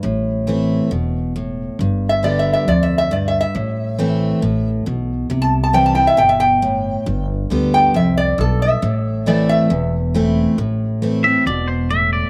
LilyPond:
<<
  \new Staff \with { instrumentName = "Resonator guitar played with a steel bar" } { \time 4/4 \key a \minor \tempo 4 = 136 r1 | \tuplet 3/2 { r4 e''8 d''8 e''8 e''8 d''8 e''8 e''8 d''8 e''8 e''8~ } | e''2~ e''8. r4 r16 | r16 a''16 r16 a''16 g''16 a''16 g''16 e''16 g''16 e''16 g''4.~ |
g''8 r4 g''8 e''8 d''8 a'8 e''8~ | e''4 d''8 e''4 r4. | r1 | }
  \new Staff \with { instrumentName = "Clean electric guitar" } { \time 4/4 \key a \minor r1 | r1 | r1 | r1 |
r1 | r1 | r4. e''8 d''8 c''8 e''8 d''8 | }
  \new Staff \with { instrumentName = "Steel-string acoustic guitar" } { \clef bass \time 4/4 \key a \minor << { r4 <e a c' e'>4 r2 | r4 <d g b g'>4 r2 | r4 <e a c' e'>4 r2 | r4 <e g c' e'>8 <c' e'>8 r2 |
r4 <d g b g'>4 r2 | r4 <e a c' e'>4 r4 <e a c' e'>4 | r4 <e a c' e'>8 <c' e'>8 r2 | } \\ { a,2 b,4 a,4 | g,2 f,4 g,4 | a,2 a,4 b,4 | c2 b,4 a,4 |
g,2 f,4 g,4 | a,2 e,2 | a,2 b,4 a,4 | } >> }
  \new Staff \with { instrumentName = "Upright bass" } { \clef bass \time 4/4 \key a \minor a,,2 e,,2 | g,,2 d,2 | a,,2 a,,4 b,,4 | c,2 g,,2 |
g,,4 d,4 c,4 b,,4 | a,,2 e,,2 | a,,2 e,,2 | }
>>